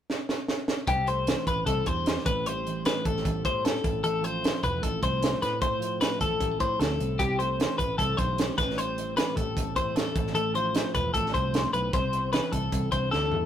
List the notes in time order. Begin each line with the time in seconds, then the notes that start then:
0.10 snare
0.29 snare
0.48 snare
0.68 snare
0.87 C2 C3 C4 G4, kick, closed hi-hat
1.07 A3 C5, closed hi-hat
1.27 E3 C4, snare, closed hi-hat
1.47 A1 E4 B4, kick, closed hi-hat
1.66 C2 C4 A4, kick, closed hi-hat
1.86 E2 G2 G3 C5, kick, closed hi-hat
1.97 A3
2.06 G4, snare, closed hi-hat
2.17 snare
2.25 A1 A2 C4 B4, kick, closed hi-hat
2.46 G3 C5, closed hi-hat
2.67 E3 C4, closed hi-hat
2.85 G4 B4, snare, closed hi-hat
3.05 A1 C4 A4, kick, closed hi-hat
3.17 snare
3.24 A1 E2 G3, kick, closed hi-hat
3.45 A2 E4 C5, kick, closed hi-hat
3.65 A4, snare, closed hi-hat
3.84 A1 A2 C4, kick, closed hi-hat
4.03 A1 A3 A4, closed hi-hat
4.21 F3 C4 C5, closed hi-hat
4.42 E4, snare, closed hi-hat
4.63 E1 C4 B4, kick, closed hi-hat
4.81 A1 A2 A3 A4, kick, closed hi-hat
5.02 C2 E4 C5, kick, closed hi-hat
5.23 snare, closed hi-hat
5.41 A2 C4 B4, snare, closed hi-hat
5.61 A3 C5, kick, closed hi-hat
5.79 F3 C4, closed hi-hat
6.01 E4 B4, snare, closed hi-hat
6.21 A1 C4 A4, kick, closed hi-hat
6.40 A1 A2 G3, kick, closed hi-hat
6.51 A3
6.60 A2 E4 C5, kick, closed hi-hat
6.80 D2 A4, snare, closed hi-hat
7.00 C2 A2 C4, closed hi-hat
7.19 C2 C3 C4 G4, kick, closed hi-hat
7.39 A3 C5, closed hi-hat
7.59 E3 C4, snare, closed hi-hat
7.78 A1 E4 B4, kick, closed hi-hat
7.98 C2 C4 A4, kick, closed hi-hat
8.17 B1 G2 A3 C5, kick, closed hi-hat
8.38 G4, snare, closed hi-hat
8.58 A1 A2 C4 B4, kick, snare, closed hi-hat
8.70 snare
8.78 G3 C5, closed hi-hat
8.98 E3 C4, closed hi-hat
9.17 G4 B4, snare, closed hi-hat
9.36 A1 C4 A4, kick, closed hi-hat
9.57 A1 E2 G3, kick, closed hi-hat
9.76 A2 E4 C5, kick, closed hi-hat
9.96 A4, snare, closed hi-hat
10.16 A1 A2 C4, kick, closed hi-hat
10.27 snare
10.35 A1 A3 A4, closed hi-hat
10.55 F3 C4 C5, closed hi-hat
10.75 E4, snare, closed hi-hat
10.94 E1 C4 B4, kick, closed hi-hat
11.14 A1 A2 A3 A4, kick, closed hi-hat
11.26 snare
11.34 C2 E4 C5, kick, closed hi-hat
11.54 snare, closed hi-hat
11.73 B1 A2 C4 B4, closed hi-hat
11.92 C2 C3 C4 C5, kick, closed hi-hat
12.13 B3, closed hi-hat
12.33 E3 C4 B4, snare, closed hi-hat
12.52 C2 E4 A4, kick, closed hi-hat
12.72 C2 C4, kick, closed hi-hat
12.92 C2 G2 B3 C5, kick, closed hi-hat
13.11 D2 E4 A4, snare
13.32 E2, floor tom